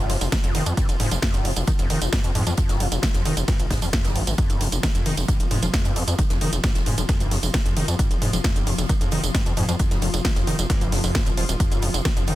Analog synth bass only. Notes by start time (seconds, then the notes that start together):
0.10 F1
0.21 F1
0.44 F1
0.55 F1
0.66 F2
0.89 F1
1.00 F1
1.11 F1
1.34 F1
1.45 F1
1.57 F1
1.79 F1
1.90 F1
2.02 F1
2.24 F2
2.35 F2
2.47 F2
2.69 F1
2.80 F1
2.92 F1
3.14 F1
3.25 F1
3.37 F1
3.60 G#1
3.71 F1
3.82 F2
4.05 G1
4.16 G#1
4.27 G#1
4.50 F1
4.61 F1
4.72 F1
4.95 F1
5.06 F1
5.17 F1
5.40 F1
5.51 F1
5.62 F1
5.85 F2
5.96 F2
6.08 F2
6.30 F1
6.41 F1
6.53 F1
6.75 F1
6.86 F1
6.98 F1
7.20 G#1
7.31 F1
7.43 F1
7.65 F1
7.77 F1
7.88 F2
8.11 F1
8.22 F1
8.33 F1
8.56 F1
8.67 F1
8.78 F1
9.01 F1
9.12 F1
9.23 F1
9.46 F2
9.57 F2
9.69 F2
9.91 F1
10.02 F1
10.14 F1
10.36 F1
10.47 F1
10.59 F1
10.81 G#1
10.92 F1
11.04 F1
11.26 D#1
11.37 D#1
11.49 D#1
11.72 F1
11.82 F1
11.94 F1
12.16 F1
12.28 F1